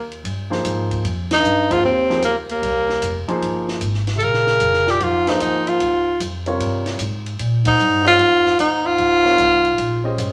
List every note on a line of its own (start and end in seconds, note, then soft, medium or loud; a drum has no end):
0.00 0.23 D#2 medium
0.12 ride soft
0.24 0.63 G2 medium
0.24 ride medium
0.50 1.01 F3 medium
0.50 1.01 A#3 medium
0.50 1.01 D#4 medium
0.50 1.01 G#4 medium
0.50 1.01 C5 medium
0.50 snare soft
0.64 1.02 G#2 medium
0.64 hi-hat pedal medium
0.64 ride medium
0.91 kick soft
0.91 ride soft
1.04 1.42 F2 medium
1.04 ride medium
1.31 1.72 G2 medium
1.31 1.74 D#4 loud
1.31 snare medium
1.31 ride medium
1.43 1.82 G2 medium
1.43 hi-hat pedal soft
1.70 1.83 G#2 medium
1.70 1.82 F3 medium
1.70 1.82 A#3 medium
1.70 1.82 D#4 medium
1.70 1.85 F4 medium
1.70 1.82 G#4 medium
1.70 1.82 C5 medium
1.70 kick soft
1.70 ride medium
1.82 2.21 D#2 medium
1.82 2.21 C4 medium
2.09 2.22 F3 medium
2.09 2.22 A#3 medium
2.09 2.22 D#4 medium
2.09 2.22 G#4 medium
2.09 2.22 C5 medium
2.09 snare soft
2.22 2.61 C#2 medium
2.22 2.35 D#2 medium
2.22 2.36 A#3 medium
2.22 hi-hat pedal soft
2.22 ride medium
2.49 3.25 D#2 medium
2.49 3.26 A#3 medium
2.49 ride soft
2.62 3.01 C2 medium
2.62 ride medium
2.89 snare soft
3.02 3.27 F1 medium
3.02 hi-hat pedal medium
3.02 ride medium
3.28 3.79 F3 medium
3.28 3.79 A#3 medium
3.28 3.79 D#4 medium
3.28 3.79 G#4 medium
3.28 3.79 C5 medium
3.28 muted upright bass stroke soft
3.28 ride soft
3.42 3.81 G1 medium
3.42 ride medium
3.68 snare soft
3.81 4.20 G#1 medium
3.81 hi-hat pedal soft
3.81 ride medium
3.94 snare soft
4.07 snare soft
4.07 ride soft
4.16 4.22 C3 medium
4.16 4.25 A4 medium
4.20 4.60 A#1 medium
4.20 4.88 C#3 medium
4.20 4.92 A#4 loud
4.20 ride soft
4.34 snare soft
4.47 snare soft
4.60 4.99 F1 medium
4.60 hi-hat pedal soft
4.60 ride medium
4.74 snare soft
4.87 5.01 A#2 medium
4.87 5.04 G4 medium
4.87 snare soft
5.00 5.39 F2 medium
5.00 5.29 G#2 medium
5.00 5.30 F4 medium
5.00 ride medium
5.27 5.41 G2 medium
5.27 5.78 F3 medium
5.27 5.78 A#3 medium
5.27 5.78 D#4 medium
5.27 5.41 D#4 medium
5.27 5.78 G#4 medium
5.27 5.78 C5 medium
5.27 snare medium
5.27 ride soft
5.40 5.65 D#2 medium
5.40 5.67 G#2 medium
5.40 5.70 D#4 medium
5.40 hi-hat pedal medium
5.40 ride medium
5.67 6.20 G#2 medium
5.67 6.21 F4 medium
5.67 muted upright bass stroke soft
5.67 ride soft
5.80 6.19 C#2 medium
5.80 ride medium
6.20 6.59 F2 medium
6.20 hi-hat pedal soft
6.20 ride medium
6.46 6.97 C3 medium
6.46 6.97 G3 medium
6.46 6.97 F4 medium
6.46 6.97 A#4 medium
6.46 6.97 C#5 medium
6.46 ride soft
6.59 6.98 G2 medium
6.59 ride medium
6.86 snare soft
6.86 ride soft
6.99 7.38 G#2 medium
6.99 hi-hat pedal medium
6.99 ride medium
7.26 ride soft
7.39 7.78 A#2 medium
7.39 ride medium
7.65 8.02 G#2 medium
7.65 8.04 D#4 medium
7.65 kick medium
7.65 ride medium
7.79 8.18 G2 medium
7.79 hi-hat pedal soft
8.04 8.54 G#2 medium
8.04 8.18 G#3 medium
8.04 8.18 C#4 medium
8.04 8.56 F4 loud
8.04 8.18 G4 medium
8.04 8.18 C5 medium
8.04 8.18 D#5 medium
8.04 ride soft
8.19 8.58 F2 medium
8.19 ride medium
8.46 snare soft
8.57 8.97 D#2 medium
8.57 8.83 G#2 medium
8.57 8.88 D#4 medium
8.57 hi-hat pedal medium
8.57 ride medium
8.83 10.17 G#2 medium
8.83 10.19 F4 loud
8.98 9.37 C#2 medium
8.98 ride soft
9.23 9.36 G3 medium
9.23 9.37 C4 medium
9.23 9.37 F4 medium
9.23 9.37 A#4 medium
9.23 9.37 C#5 medium
9.23 snare soft
9.38 9.77 C2 medium
9.38 hi-hat pedal medium
9.38 ride medium
9.65 ride soft
9.78 10.17 A#1 medium
9.78 ride medium
10.04 10.32 G#3 medium
10.04 10.32 C#4 medium
10.04 10.32 G4 medium
10.04 10.32 C5 medium
10.04 10.32 D#5 medium
10.18 10.32 G1 medium
10.18 hi-hat pedal medium
10.18 ride medium